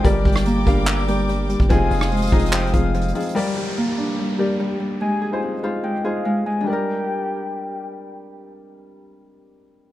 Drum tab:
HH |x-----------x---x---x---x-----------x-----------x-----------x-----------x-----------x-----------|x-----------o-----------x--x--x--x--x---x---x---x---x---x---x-----------x---x---x---x--xx-x-xx--|------------------------------------------------------------------------------------------------|------------------------------------------------------------------------------------------------|
CP |------------------------------------------------x-----------------------------------------------|------------------------------------------------x-----------------------------------------------|------------------------------------------------------------------------------------------------|------------------------------------------------------------------------------------------------|
SD |------------------r-----------------------------------------------------------------------------|------------------r-----------------------------------------------------------------------------|------------------------------------------------------------------------------------------------|------------------------------------------------------------------------------------------------|
BD |o-----------o-----------------------o-----------------------------------------------------o-----|o-----------------------------------o-----------------------o-----------------------------------|------------------------------------------------------------------------------------------------|------------------------------------------------------------------------------------------------|

HH |------------------------------------------------------------------------------------------------|------------------------------------------------------------------------------------------------|
CP |------------------------------------------------------------------------------------------------|------------------------------------------------------------------------------------------------|
SD |------------------------------------------------------------------------------------------------|------------------------------------------------------------------------------------------------|
BD |------------------------------------------------------------------------------------------------|------------------------------------------------------------------------------------------------|